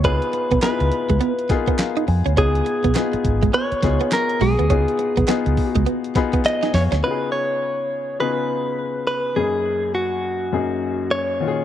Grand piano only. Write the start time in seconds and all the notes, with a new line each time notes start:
Already playing: B3 D#4 F4 G4 G#4
0.04 B3 D#4 F4 G#4
0.62 B3 D#4 E4 G#4
0.69 F4
1.50 B3 D#4 F4 G#4
1.79 F5
2.08 G#5
2.37 B3 D#4 F4 G#4
2.95 B3 D#4 F4 G#4
3.83 B3 D#4 F4 G#4
4.70 B3 D#4 F4 G#4
5.28 B3 D#4 F4 G#4
6.16 B3 D#4 F4 G#4 B5
6.45 G#5
6.63 G#5
6.75 F5
7.03 C#3 B3 D#4 F4 F#4
7.11 G#4
8.20 C#3 B3 D#4 F4 G#4
9.36 F#2 A#3 C#4 D#4 G#4
10.53 F#2 A#3 C#4 D#4 G#4
11.40 A#2 D#3 C#4 F4 F#4
11.48 G#4